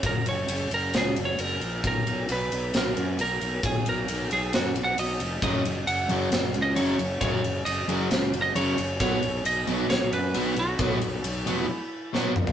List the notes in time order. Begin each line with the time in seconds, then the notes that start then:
0.03 F#1 A#4, kick, ride
0.26 F#1 C#5, ride
0.48 F#1, ride
0.71 F#1 A#4, ride
0.94 C#2 G#4, snare, ride
1.16 F#1, ride
1.25 C#5
1.39 F#1 A#4, ride
1.61 A#1, ride
1.84 B1 A#4, kick, ride
2.07 B1, ride
2.29 B1 B4, ride
2.52 B1, ride
2.74 B1 A#4, snare, ride
2.97 F#2, ride
3.19 B1 A#4, ride
3.41 B1, ride
3.63 B1 G#4, kick, ride
3.86 B1 A#4, ride
4.08 B1, ride
4.31 B1 G#4, ride
4.53 F#2 F#4, snare, ride
4.76 B1, ride
4.84 F#5
4.98 B1 D#5, ride
5.20 F1, ride
5.42 F#1 F#2 C#3 F#3 D#5, kick, ride
5.65 F#1, ride
5.87 F#1 F#5, ride
6.09 F#1 F#2 C#3 F#3, ride
6.32 F#1, snare, ride
6.54 C#2, ride
6.62 D#5
6.76 F#1 F#2 C#3 F#3 C#5, ride
6.99 F#1, ride
7.21 F#1 F#2 C#3 F#3 C#5, kick, ride
7.44 F#1, ride
7.65 F#1 D#5, ride
7.88 F#1 F#2 C#3 F#3, ride
8.11 C#2, snare, ride
8.33 F#1, ride
8.42 D#5
8.55 F#1 F#2 C#3 F#3 C#5, ride
8.78 F#1, ride
9.00 B1 B2 F#3 B3 C#5, kick, ride
9.22 B1, ride
9.45 B1 D#5, ride
9.67 B1 B2 F#3 B3, ride
9.89 B1 C#5, snare, ride
10.12 F#2 B4, ride
10.34 B1 B2 F#3 B3, ride
10.56 B1 F#4, ride
10.79 B1 B2 F#3 B3, kick, ride
11.01 B1, ride
11.24 B1, ride
11.46 F1 B2 F#3 B3, ride
11.60 E4
12.13 B2 F#3 B3, snare
12.36 mid tom
12.47 floor tom